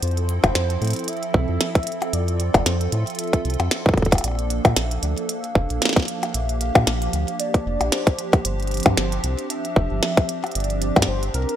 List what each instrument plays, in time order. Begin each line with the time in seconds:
Already playing: analog synth pad F3
0.03 analog synth bass F2, analog synth pad C4 E4 A4, soft synth lead C5, closed hi-hat
0.08 closed hi-hat
0.11 closed hi-hat
0.17 closed hi-hat
0.29 closed hi-hat
0.44 analog synth bass F1, kick, closed hi-hat, percussion blips
0.55 analog synth bass F2, snare, closed hi-hat
0.70 closed hi-hat
0.82 analog synth bass A2, closed hi-hat
0.85 closed hi-hat
0.87 closed hi-hat
0.91 closed hi-hat
0.93 closed hi-hat
0.96 closed hi-hat
0.99 closed hi-hat
1.04 closed hi-hat
1.08 soft synth lead E5, closed hi-hat
1.13 closed hi-hat
1.17 closed hi-hat
1.23 closed hi-hat
1.34 analog synth bass C2, kick
1.49 analog synth bass F2
1.61 snare, closed hi-hat
1.75 kick, closed hi-hat
1.83 closed hi-hat
1.87 closed hi-hat
1.92 closed hi-hat
2.02 closed hi-hat, percussion blips
2.13 analog synth bass F2, analog synth pad F4, soft synth lead D5, closed hi-hat
2.28 closed hi-hat
2.40 closed hi-hat
2.54 analog synth bass F1, kick, closed hi-hat, percussion blips
2.66 analog synth bass F2, soft synth lead C5, snare, closed hi-hat
2.81 closed hi-hat
2.92 analog synth bass A2, soft synth lead E5, closed hi-hat
3.07 closed hi-hat
3.10 closed hi-hat
3.15 closed hi-hat
3.19 closed hi-hat
3.24 closed hi-hat
3.27 closed hi-hat
3.33 kick, closed hi-hat
3.45 analog synth bass C2, closed hi-hat
3.50 closed hi-hat
3.54 closed hi-hat
3.60 analog synth bass F2, closed hi-hat, percussion blips
3.71 snare, closed hi-hat
3.86 kick
3.89 kick
3.94 kick
3.97 analog synth bass F1, kick, closed hi-hat
4.02 kick, closed hi-hat
4.06 kick
4.12 kick, closed hi-hat, percussion blips
4.15 closed hi-hat, percussion blips
4.18 percussion blips
4.21 analog synth bass A#1, analog synth pad F3 A#3 D4, soft synth lead D5, closed hi-hat, percussion blips
4.24 percussion blips
4.28 percussion blips
4.31 percussion blips
4.35 closed hi-hat, percussion blips
4.50 closed hi-hat
4.65 analog synth bass A#2, soft synth lead E5, kick, closed hi-hat, percussion blips
4.76 analog synth bass A#1, snare, closed hi-hat
4.91 closed hi-hat
5.03 analog synth bass D2, soft synth lead D5, closed hi-hat
5.18 closed hi-hat
5.29 soft synth lead F5, closed hi-hat
5.44 closed hi-hat
5.55 analog synth bass F1, kick
5.70 analog synth bass A#1, closed hi-hat
5.82 snare, closed hi-hat
5.85 snare
5.89 snare
5.93 kick, snare
5.97 snare, closed hi-hat
6.00 snare
6.03 snare
6.05 snare, closed hi-hat
6.23 closed hi-hat, percussion blips
6.34 analog synth bass A#1, analog synth pad G4, soft synth lead E5, closed hi-hat
6.49 closed hi-hat
6.61 soft synth lead F5, closed hi-hat
6.75 analog synth bass A#2, kick, closed hi-hat, percussion blips
6.87 analog synth bass A#1, snare, closed hi-hat
7.02 closed hi-hat
7.13 analog synth bass D2, closed hi-hat
7.28 closed hi-hat
7.40 soft synth lead D5, closed hi-hat
7.54 kick, closed hi-hat
7.66 analog synth bass F1, soft synth lead D5
7.81 analog synth bass A#1, closed hi-hat, percussion blips
7.92 soft synth lead C5, snare, closed hi-hat
8.07 kick, closed hi-hat
8.19 closed hi-hat
8.33 kick, closed hi-hat, percussion blips
8.45 analog synth bass G1, analog synth pad C4, soft synth lead C5, closed hi-hat
8.60 closed hi-hat
8.63 closed hi-hat
8.67 closed hi-hat
8.71 closed hi-hat
8.74 closed hi-hat
8.77 closed hi-hat
8.80 closed hi-hat
8.83 analog synth bass G2, kick, closed hi-hat
8.86 closed hi-hat, percussion blips
8.97 analog synth bass G1, snare, closed hi-hat
9.12 closed hi-hat
9.24 analog synth bass C2, closed hi-hat
9.39 closed hi-hat
9.50 soft synth lead E5, closed hi-hat
9.65 closed hi-hat
9.76 analog synth bass F1, kick
9.91 analog synth bass G1
10.03 snare
10.17 kick, closed hi-hat
10.29 closed hi-hat
10.44 closed hi-hat, percussion blips
10.47 closed hi-hat
10.52 analog synth bass G1, analog synth pad G4, soft synth lead D5, closed hi-hat
10.55 closed hi-hat
10.60 closed hi-hat
10.64 closed hi-hat
10.70 closed hi-hat
10.82 closed hi-hat
10.96 analog synth bass G2, kick, closed hi-hat, percussion blips
11.02 snare, closed hi-hat
11.08 analog synth bass G1, soft synth lead C5
11.23 closed hi-hat
11.34 analog synth bass C2, soft synth lead A#4, closed hi-hat
11.49 closed hi-hat